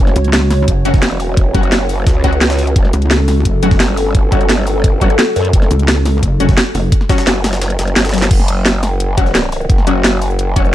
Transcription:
Already playing: analog synth pad C#4 F#4 C#5
0.00 wobble bass F#1
0.07 snare
0.16 wobble bass C#2, closed hi-hat, cabasa
0.24 closed hi-hat, cabasa
0.33 snare, closed hi-hat
0.51 snare, closed hi-hat, open hi-hat, cabasa
0.68 wobble bass F#1, kick, closed hi-hat
0.85 wobble bass F#1, synth stab F#3 C#4 F#4, closed hi-hat, cabasa
0.94 kick, snare, closed hi-hat
1.03 wobble bass E1, snare, closed hi-hat
1.11 closed hi-hat
1.20 open hi-hat, cabasa
1.37 kick, closed hi-hat
1.55 wobble bass F#1, synth stab F#3 C#4 F#4, kick, closed hi-hat, cabasa
1.63 closed hi-hat, cabasa
1.72 snare, closed hi-hat
1.89 closed hi-hat, open hi-hat, cabasa
2.07 wobble bass C#2, kick, snare, closed hi-hat
2.24 synth stab F#3 C#4 F#4, kick, closed hi-hat, cabasa
2.33 closed hi-hat
2.41 snare, closed hi-hat
2.50 snare, closed hi-hat
2.59 open hi-hat, cabasa
2.67 closed hi-hat
2.76 wobble bass F#1, analog synth pad A4, kick, closed hi-hat
2.85 snare
2.93 wobble bass C#2, closed hi-hat, cabasa
3.02 closed hi-hat, cabasa
3.11 snare, closed hi-hat
3.28 snare, closed hi-hat, open hi-hat, cabasa
3.45 wobble bass F#1, kick, closed hi-hat
3.63 wobble bass F#1, synth stab F#3 C#4 F#4, closed hi-hat, cabasa
3.71 kick, snare, closed hi-hat
3.80 wobble bass G1, snare, closed hi-hat
3.89 closed hi-hat
3.97 closed hi-hat, open hi-hat, cabasa
4.15 kick, closed hi-hat
4.32 synth stab F#3 C#4 F#4, kick, closed hi-hat, cabasa
4.41 closed hi-hat, cabasa
4.49 snare, closed hi-hat
4.67 closed hi-hat, open hi-hat, cabasa
4.84 kick, closed hi-hat
5.01 synth stab F#3 C#4 F#4, kick, closed hi-hat, cabasa
5.10 closed hi-hat
5.19 snare, closed hi-hat
5.36 wobble bass F#2, closed hi-hat, open hi-hat, cabasa
5.45 closed hi-hat
5.53 wobble bass F#1, kick, closed hi-hat
5.62 snare
5.71 wobble bass C#2, closed hi-hat, cabasa
5.79 closed hi-hat, cabasa
5.88 snare, closed hi-hat
6.05 snare, closed hi-hat, open hi-hat, cabasa
6.23 wobble bass F#1, kick, closed hi-hat
6.40 wobble bass F#1, synth stab F#3 C#4 F#4, closed hi-hat, cabasa
6.49 kick, snare, closed hi-hat
6.58 snare, closed hi-hat
6.66 closed hi-hat
6.75 wobble bass F#1, closed hi-hat, open hi-hat, cabasa
6.92 kick, closed hi-hat
7.01 snare
7.09 synth stab F#3 C#4 F#4, kick, snare, closed hi-hat, cabasa
7.18 snare, closed hi-hat, cabasa
7.27 wobble bass F#1, snare, closed hi-hat
7.44 snare, closed hi-hat, open hi-hat, cabasa
7.53 snare, closed hi-hat
7.62 snare, closed hi-hat
7.70 closed hi-hat
7.79 wobble bass F#1, snare, closed hi-hat, cabasa
7.88 closed hi-hat
7.96 wobble bass G1, snare, closed hi-hat
8.05 snare, closed hi-hat
8.09 snare, closed hi-hat
8.14 snare, closed hi-hat, open hi-hat, high tom, cabasa
8.18 snare, closed hi-hat
8.22 snare, closed hi-hat, cabasa
8.31 wobble bass F#1, kick, closed hi-hat, crash
8.40 snare
8.48 closed hi-hat, cabasa
8.66 snare, closed hi-hat
8.83 snare, closed hi-hat, open hi-hat, cabasa
9.00 closed hi-hat
9.18 synth stab F#3 C#4 F#4, kick, closed hi-hat, cabasa
9.26 snare, cabasa
9.35 snare, closed hi-hat
9.44 closed hi-hat
9.52 closed hi-hat, open hi-hat, cabasa
9.61 cabasa
9.70 wobble bass F#1, kick, closed hi-hat
9.78 snare
9.87 synth stab F#3 C#4 F#4, closed hi-hat, cabasa
10.04 snare, closed hi-hat
10.22 closed hi-hat, open hi-hat, cabasa
10.30 cabasa
10.39 closed hi-hat
10.56 synth stab F#3 C#4 F#4, kick, closed hi-hat, cabasa
10.65 wobble bass E1, cabasa

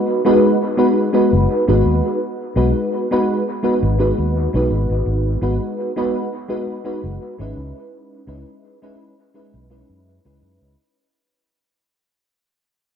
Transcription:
Already playing: fm electric piano G#3 B3 D#4 F#4 B4
0.25 fm electric piano G#3 B3 D#4 F#4 B4
0.77 fm electric piano G#3 B3 D#4 F#4 B4
1.13 fm electric piano G#3 B3 D#4 F#4 B4
1.33 fingered electric bass F#1
1.68 fingered electric bass G#1, fm electric piano G#3 B3 D#4 F#4 B4
1.85 fingered electric bass D#2
2.56 fingered electric bass B1, fm electric piano G#3 B3 D#4 F#4 B4
3.11 fm electric piano G#3 B3 D#4 F#4 B4
3.63 fm electric piano G#3 B3 D#4 F#4 B4
3.83 fingered electric bass G#1
3.98 fm electric piano G#3 B3 D#4 F#4 B4
4.18 fingered electric bass D#2
4.53 fingered electric bass B1, fm electric piano G#3 B3 D#4 F#4 B4
4.70 fingered electric bass G#1
4.89 fingered electric bass G#1
5.06 fingered electric bass G#1
5.41 fingered electric bass G#1, fm electric piano G#3 B3 D#4 F#4 B4
5.96 fm electric piano G#3 B3 D#4 F#4 B4
6.48 fm electric piano G#3 B3 D#4 F#4 B4
6.84 fm electric piano G#3 B3 D#4 F#4 B4
7.04 fingered electric bass F#1
7.38 fingered electric bass G#1, fm electric piano G#3 C#4 D#4 E4 B4
7.56 fingered electric bass C#2
8.27 fingered electric bass C#2, fm electric piano G#3 C#4 D#4 E4 B4
8.82 fm electric piano G#3 C#4 D#4 E4 B4
9.34 fm electric piano G#3 C#4 D#4 E4 B4
9.54 fingered electric bass B1
9.70 fm electric piano G#3 C#4 D#4 E4 B4
9.90 fingered electric bass F#2
10.25 fingered electric bass C#2, fm electric piano G#3 C#4 D#4 E4 B4
10.42 fingered electric bass F#2
10.61 fingered electric bass C#2

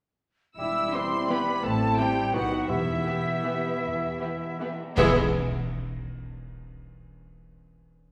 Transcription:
0.57 double bass section E1, french horn section G3 E4, bassoon G3, clarinet E4, cello section E4, cor anglais E5, violin section E6, flute E6
0.93 viola section E3 B3, cello section C4, violin section E4 G4 C6, cor anglais C5, flute C6
1.29 viola section E3 B3, cello section B3, violin section E4 G4 B5, cor anglais B4, flute B5
1.63 double bass section A1, cello section A3, french horn section C4, bassoon C4, cor anglais A4, violin section A5, flute A5
1.97 viola section E3 C4, cello section G3, violin section E4 A4 G5, cor anglais G4, flute G5
2.33 double bass section B1, viola section D#3 B3, cello section F#3, french horn section B3 D#4, bassoon B3, violin section B3 F#4 F#5, clarinet D#4, cor anglais F#4, flute F#5
2.68 timpani E2, double bass section E2, cello section E3, french horn section B3 G4, bassoon B3, cor anglais E4, clarinet G4, violin section E5, flute E5
3.06 viola section E3 B3, violin section B3 G4
3.44 viola section E3 B3, violin section B3 G4
3.82 double bass section E2
4.20 viola section E3 B3, violin section B3 G4
4.60 viola section E3 B3, violin section B3 G4
4.97 timpani E2, double bass section E2, viola section E3 G#3, cello section E3, bassoon B3, french horn section B3 G#4, violin section B3 E4 E5, cor anglais E4, flute G#4, clarinet G#4, concert bass drum, crash

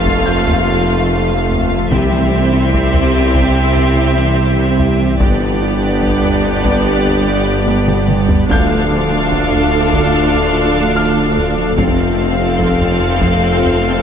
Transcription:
Already playing: tuba F1, double bass section F1, sub bass F1, cello section F2, ambient pad F3 F4 A4 C5, french horn section A3 F4, viola section A3, violin section F4 F5, grand piano A5 A6
0.06 synth pluck F3, taiko
0.26 synth pluck F4, grand piano G6
0.47 taiko low
0.69 synth pluck F3
0.89 synth pluck A3
1.30 synth pluck F3
1.50 taiko low
1.71 synth pluck A3
1.90 sub bass C2, double bass section C2, tuba C2, cello section C3, synth pluck C3, ambient pad G3 E4 G4 C5, french horn section G3 E4, viola section C4, violin section G4 E5, taiko
2.12 synth pluck E3
2.32 synth pluck E3
2.52 synth pluck C4
2.73 synth pluck C3, taiko
2.94 taiko low
3.34 synth pluck C3, taiko
3.56 synth pluck C4
3.76 taiko low
3.97 synth pluck C3
4.17 synth pluck E3
4.58 synth pluck C3
4.79 taiko low
5.00 synth pluck E3
5.18 tuba G1, sub bass G1, double bass section G1, cello section G2, ambient pad G3 D4 G4 B4, synth pluck G3, french horn section B3 D4, viola section B3, violin section G4 D5, taiko
5.41 synth pluck B3
5.62 synth pluck B3
5.82 synth pluck G4
6.02 synth pluck G3, taiko
6.24 taiko low
6.65 synth pluck G3, taiko
6.85 synth pluck G4
7.06 taiko low
7.27 synth pluck G3
7.47 synth pluck B3
7.68 taiko high
7.87 synth pluck G3, taiko mid
8.08 taiko mid
8.28 synth pluck B3, taiko low
8.48 sub bass D1, cello section D2, tuba D2, double bass section D2, synth pluck D3, ambient pad A3 D4 F4 A4, french horn section A3 F4, viola section D4, violin section A4 F5, grand piano G6, taiko
8.70 synth pluck F3
8.90 synth pluck F3
9.11 synth pluck D4
9.31 synth pluck D3, taiko
9.52 taiko low
9.93 synth pluck D3, taiko
10.13 synth pluck D4
10.34 taiko low
10.54 synth pluck D3
10.75 synth pluck F3
10.96 grand piano F6
11.16 synth pluck D3
11.37 taiko low
11.57 synth pluck F3
11.77 sub bass F1, tuba F1, double bass section F1, cello section F2, synth pluck F3, french horn section A3 F4, ambient pad A3 C4 F4 C5, viola section C4, violin section A4 F5, taiko
11.98 synth pluck A3
12.18 synth pluck A3
12.39 synth pluck F4
12.60 synth pluck F3, taiko
12.81 taiko low
13.21 synth pluck F3, taiko
13.42 synth pluck F4
13.63 taiko low
13.83 synth pluck F3

